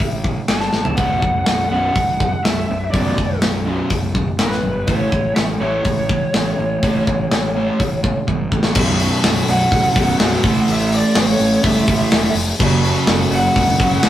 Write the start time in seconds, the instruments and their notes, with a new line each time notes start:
Already playing: lead electric guitar E5
0.00 fingered electric bass A1, kick, open hi-hat
0.24 kick
0.48 fingered electric bass G1, lead electric guitar A5, snare, open hi-hat
0.61 snare
0.73 fingered electric bass A1, snare
0.85 floor tom
0.96 fingered electric bass B0, overdriven electric guitar B1 F#2 B2, lead electric guitar F#5, kick, open hi-hat
1.22 fingered electric bass B0, overdriven electric guitar B1 F#2, kick
1.45 fingered electric bass B0, overdriven electric guitar B1 F#2, lead electric guitar F#5, snare, open hi-hat
1.69 fingered electric bass B0, overdriven electric guitar B1 F#2 B2, lead electric guitar F#5
1.95 fingered electric bass B0, overdriven electric guitar B1 F#2, kick, open hi-hat
2.20 overdriven electric guitar B1 F#2, kick
2.44 fingered electric bass B0, overdriven electric guitar B1 F#2, lead electric guitar E5, snare, open hi-hat
2.69 fingered electric bass B0, overdriven electric guitar B1 F#2
2.92 fingered electric bass B0, overdriven electric guitar B1 F#2 B2, lead electric guitar D5, kick, open hi-hat
3.16 fingered electric bass B0, overdriven electric guitar B1 F#2, kick
3.41 fingered electric bass B0, overdriven electric guitar B1 F#2, snare, open hi-hat
3.66 overdriven electric guitar B1 F#2 B2
3.90 fingered electric bass B0, overdriven electric guitar B1 F#2, kick, open hi-hat
4.15 overdriven electric guitar B1 F#2, kick
4.39 fingered electric bass A1, overdriven electric guitar B1 F#2, snare, open hi-hat
4.43 lead electric guitar B4
4.52 snare
4.62 fingered electric bass G1, overdriven electric guitar B1 F#2
4.87 fingered electric bass A1, overdriven electric guitar A2 E3 A3, lead electric guitar C#5, kick, open hi-hat
5.11 fingered electric bass A1, overdriven electric guitar A2 E3, kick
5.35 fingered electric bass A1, overdriven electric guitar A2 E3, lead electric guitar E5, snare, open hi-hat
5.60 fingered electric bass A1, overdriven electric guitar A2 E3 A3, lead electric guitar C#5
5.85 fingered electric bass A1, overdriven electric guitar A2 E3, kick, open hi-hat
6.09 overdriven electric guitar A2 E3, kick
6.34 fingered electric bass A1, overdriven electric guitar A2 E3, snare, open hi-hat
6.59 fingered electric bass A1, overdriven electric guitar A2 E3
6.83 fingered electric bass A1, overdriven electric guitar A2 E3 A3, kick, open hi-hat
7.07 fingered electric bass A1, overdriven electric guitar A2 E3, kick
7.32 fingered electric bass A1, overdriven electric guitar A2 E3, snare, open hi-hat
7.56 overdriven electric guitar A2 E3 A3
7.80 fingered electric bass A1, overdriven electric guitar A2 E3, kick, open hi-hat
8.03 overdriven electric guitar A2 E3, kick
8.27 fingered electric bass G1, overdriven electric guitar A2 E3, kick
8.51 fingered electric bass A1, overdriven electric guitar A2 E3, kick
8.63 snare
8.74 fingered electric bass B0, overdriven electric guitar B1 F#2 B2, kick, crash
8.99 open hi-hat
9.24 fingered electric bass B0, snare, open hi-hat
9.48 fingered electric bass B0, lead electric guitar F#5, open hi-hat
9.72 fingered electric bass A1, kick, open hi-hat
9.95 fingered electric bass B0, overdriven electric guitar B1 F#2 B2, kick, open hi-hat
10.19 fingered electric bass B0, overdriven electric guitar B1 F#2 B2, snare, open hi-hat
10.43 fingered electric bass A1, overdriven electric guitar A2 E3 A3, kick, open hi-hat
10.68 fingered electric bass A1, open hi-hat
10.72 lead electric guitar E5
10.92 lead electric guitar D5, open hi-hat
11.15 fingered electric bass A1, snare, open hi-hat
11.20 lead electric guitar C#5
11.39 fingered electric bass A1, open hi-hat
11.63 fingered electric bass G1, overdriven electric guitar A2 E3 A3, lead electric guitar E5, kick, open hi-hat
11.87 fingered electric bass A1, overdriven electric guitar A2 E3 A3, kick, open hi-hat
12.11 fingered electric bass E1, snare, open hi-hat
12.35 fingered electric bass F1, open hi-hat
12.59 fingered electric bass F#1, overdriven electric guitar F#2 C#3 F#3, kick, crash
12.84 open hi-hat
13.07 fingered electric bass F#1, snare, open hi-hat
13.30 fingered electric bass F#1, open hi-hat
13.35 lead electric guitar F#5
13.56 fingered electric bass E1, kick, open hi-hat
13.80 fingered electric bass F#1, overdriven electric guitar F#2 C#3 F#3, kick, open hi-hat
14.03 fingered electric bass C#1, overdriven electric guitar F#2 C#3 F#3, snare, open hi-hat